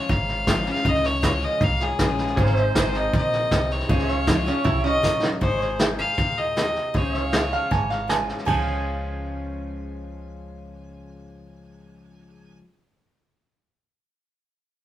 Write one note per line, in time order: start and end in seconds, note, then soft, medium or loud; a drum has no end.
0.00 1.77 C#4 medium
0.00 2.35 C#4 medium
0.00 1.77 F4 medium
0.00 1.77 G#4 medium
0.00 0.13 C#5 loud
0.00 1.78 C#5 medium
0.00 2.35 F5 medium
0.09 0.68 G#1 medium
0.09 0.82 G#2 medium
0.09 0.68 F5 loud
0.09 kick loud
0.09 snare soft
0.28 snare soft
0.47 0.66 F3 medium
0.47 0.66 G#3 loud
0.47 0.66 C#4 medium
0.47 0.64 F4 medium
0.47 kick medium
0.47 snare loud
0.47 hi-hat pedal medium
0.65 0.85 C#4 medium
0.65 0.84 F4 medium
0.65 snare soft
0.70 0.90 F5 loud
0.75 snare soft
0.85 1.44 C#2 loud
0.85 1.58 C#3 loud
0.85 1.08 D#5 loud
0.85 kick loud
0.85 snare soft
0.94 snare soft
1.03 1.46 C#5 loud
1.03 snare soft
1.22 1.59 F3 medium
1.22 1.60 G#3 medium
1.22 1.60 C#4 loud
1.22 1.60 F4 loud
1.22 kick medium
1.22 snare loud
1.22 hi-hat pedal medium
1.42 1.65 D#5 loud
1.42 snare soft
1.60 1.94 C2 medium
1.60 2.34 G#2 loud
1.60 1.84 F5 loud
1.60 kick loud
1.60 snare soft
1.80 2.38 C#4 soft
1.80 2.38 F4 soft
1.80 2.37 G#4 soft
1.80 2.42 G#4 loud
1.80 2.39 C#5 medium
1.80 snare soft
1.99 2.32 A#1 medium
1.99 2.35 F3 medium
1.99 2.36 G#3 loud
1.99 2.36 C#4 medium
1.99 2.36 F4 loud
1.99 kick medium
1.99 snare loud
1.99 hi-hat pedal medium
2.18 snare soft
2.27 snare soft
2.36 2.67 G#1 loud
2.36 3.10 G#2 medium
2.36 3.86 C4 medium
2.36 3.87 D#4 medium
2.36 3.87 G#4 medium
2.36 3.88 C5 medium
2.36 2.57 C#5 medium
2.36 2.64 F5 medium
2.36 kick loud
2.36 snare soft
2.41 2.77 C5 medium
2.46 snare soft
2.56 3.88 C5 medium
2.56 snare soft
2.64 3.89 D#5 medium
2.75 3.08 G#1 loud
2.75 3.12 G#3 medium
2.75 3.12 C4 medium
2.75 3.12 D#4 loud
2.75 3.13 G#4 loud
2.75 2.98 C5 medium
2.75 kick medium
2.75 snare loud
2.75 hi-hat pedal loud
2.94 3.15 D#5 loud
2.94 snare soft
3.13 3.46 A#1 medium
3.13 3.50 A#2 medium
3.13 3.74 D#5 loud
3.13 kick loud
3.13 snare soft
3.33 snare soft
3.51 3.84 C2 medium
3.51 3.88 C3 medium
3.51 kick medium
3.51 snare loud
3.51 hi-hat pedal medium
3.70 4.84 C#5 medium
3.70 snare soft
3.80 snare soft
3.89 4.48 C#2 loud
3.89 4.62 C#3 medium
3.89 5.38 G#3 medium
3.89 5.39 F4 medium
3.89 5.40 G#4 medium
3.89 5.39 G#4 medium
3.89 4.10 C5 medium
3.89 5.39 C#5 medium
3.89 4.15 D#5 medium
3.89 kick loud
3.89 snare soft
3.99 snare soft
4.08 5.40 C#5 medium
4.08 snare soft
4.15 5.41 F5 medium
4.27 4.46 F3 medium
4.27 4.46 G#3 loud
4.27 4.46 C#4 medium
4.27 4.45 F4 medium
4.27 kick medium
4.27 snare loud
4.27 hi-hat pedal medium
4.46 4.65 C#4 medium
4.46 4.66 C#4 medium
4.46 4.65 F4 medium
4.46 snare soft
4.64 4.98 C2 medium
4.64 5.01 C3 loud
4.64 4.83 E4 medium
4.64 kick loud
4.64 snare soft
4.84 5.30 C#4 medium
4.84 5.20 D#5 loud
4.84 snare soft
5.03 5.36 A#1 medium
5.03 5.40 F#2 medium
5.03 kick medium
5.03 snare medium
5.03 hi-hat pedal medium
5.23 snare medium
5.41 6.00 G#1 medium
5.41 6.14 G#2 medium
5.41 6.93 G#4 medium
5.41 5.77 C5 medium
5.41 5.63 C#5 medium
5.41 6.94 D#5 medium
5.41 kick loud
5.41 snare soft
5.61 6.93 C5 medium
5.61 snare soft
5.79 5.98 G#3 medium
5.79 5.98 C4 medium
5.79 5.98 D#4 medium
5.79 5.97 G#4 medium
5.79 snare loud
5.79 hi-hat pedal medium
5.99 6.18 D#4 soft
5.99 6.17 G#4 medium
5.99 6.39 F5 loud
5.99 snare soft
6.18 6.77 D#2 medium
6.18 6.54 A#2 medium
6.18 kick loud
6.18 snare soft
6.37 6.98 D#5 loud
6.37 snare soft
6.56 6.92 C3 medium
6.56 snare loud
6.56 hi-hat pedal medium
6.75 snare soft
6.94 7.53 C#2 medium
6.94 7.67 C#3 medium
6.94 8.46 G#4 medium
6.94 7.16 C5 medium
6.94 8.10 C#5 medium
6.94 7.22 D#5 medium
6.94 kick loud
6.94 snare soft
7.14 8.46 C#5 medium
7.14 snare soft
7.22 8.47 F5 medium
7.32 7.69 F3 medium
7.32 7.69 G#3 medium
7.32 7.69 C#4 medium
7.32 7.70 F4 medium
7.32 snare loud
7.32 hi-hat pedal medium
7.52 7.71 F5 medium
7.52 snare soft
7.71 8.30 G#1 medium
7.71 8.43 G#2 medium
7.71 7.90 G#5 medium
7.71 kick loud
7.71 snare soft
7.90 8.08 F5 medium
7.90 snare soft
8.08 8.44 F3 medium
8.08 8.45 G#3 medium
8.08 8.45 C#4 soft
8.08 8.45 F4 medium
8.08 8.37 G#5 medium
8.08 snare loud
8.08 hi-hat pedal medium
8.29 snare soft
8.38 snare soft
8.45 12.59 C#2 medium
8.45 12.61 C#3 medium
8.45 12.62 F3 medium
8.45 12.63 G#3 medium
8.45 12.63 C#4 medium
8.45 12.64 F4 medium
8.45 12.29 G#4 medium
8.45 12.30 C#5 medium
8.45 12.58 G#5 medium
8.45 kick loud
8.45 crash medium
8.50 12.30 F5 medium